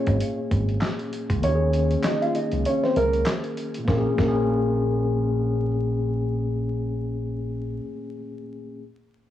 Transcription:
0.00 1.36 A#2 medium
0.00 1.38 A#3 medium
0.00 0.95 C#4 medium
0.00 1.40 C#4 medium
0.00 1.41 G#4 medium
0.00 0.95 C#5 medium
0.07 0.18 G#1 medium
0.07 kick medium
0.07 closed hi-hat medium
0.20 closed hi-hat loud
0.51 0.77 G#1 medium
0.51 kick loud
0.51 closed hi-hat medium
0.68 closed hi-hat soft
0.81 snare loud
0.81 clap loud
0.81 closed hi-hat medium
0.99 closed hi-hat soft
1.13 closed hi-hat medium
1.30 1.41 C#2 medium
1.30 kick medium
1.30 closed hi-hat medium
1.39 3.82 D#3 medium
1.39 3.83 A#3 medium
1.43 1.95 D#2 loud
1.43 2.01 C#4 medium
1.43 3.85 C#4 medium
1.43 2.01 C#5 medium
1.43 closed hi-hat medium
1.48 1.53 G4 medium
1.55 3.90 G#4 medium
1.73 closed hi-hat medium
1.91 closed hi-hat medium
2.04 2.20 D#4 medium
2.04 2.20 D#5 medium
2.04 snare loud
2.04 clap loud
2.04 closed hi-hat loud
2.22 2.34 F4 medium
2.22 2.33 F5 medium
2.22 closed hi-hat soft
2.35 2.63 D#4 medium
2.35 2.63 D#5 medium
2.35 closed hi-hat medium
2.52 2.63 C#2 medium
2.52 closed hi-hat soft
2.65 2.82 C#4 medium
2.65 2.81 C#5 medium
2.65 closed hi-hat medium
2.83 2.95 C4 medium
2.83 2.95 C5 medium
2.83 snare soft
2.96 3.22 C#2 medium
2.96 3.24 A#3 medium
2.96 3.24 A#4 medium
2.96 closed hi-hat medium
3.13 closed hi-hat soft
3.26 snare loud
3.26 clap loud
3.26 closed hi-hat medium
3.44 closed hi-hat soft
3.57 closed hi-hat medium
3.75 4.01 A#2 medium
3.75 closed hi-hat medium
3.85 4.07 A#1 medium
3.85 4.05 A#3 medium
3.85 4.07 A#3 medium
3.85 kick loud
3.85 snare medium
3.91 4.08 C#4 medium
3.98 4.12 G#4 medium
4.09 7.74 A#2 medium
4.15 7.79 A#1 medium
4.15 7.77 A#3 medium
4.15 5.68 A#3 medium
4.15 kick loud
4.15 snare medium
4.22 7.80 C#4 medium
4.28 7.84 G#4 medium

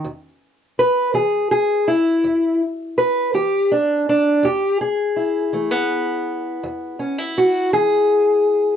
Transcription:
0.04 0.71 E2 medium
0.79 1.14 B4 loud
1.14 1.80 E3 medium
1.14 1.50 G#4 medium
1.51 1.88 G#4 medium
1.88 2.61 E4 medium
2.24 2.90 E2 medium
2.98 3.34 B4 medium
3.34 4.00 E3 medium
3.34 3.71 G4 medium
3.72 4.08 D4 medium
4.09 4.45 D4 medium
4.43 5.09 E2 medium
4.43 4.80 G4 medium
4.81 7.00 G#4 medium
5.16 6.99 E4 soft
5.53 6.19 E3 medium
5.53 5.71 A3 soft
5.71 8.77 B3 soft
6.63 7.29 E2 medium
6.99 7.18 C#4 soft
7.18 8.77 E4 soft
7.38 7.73 F#4 medium
7.73 8.38 E3 medium
7.73 8.77 G#4 loud

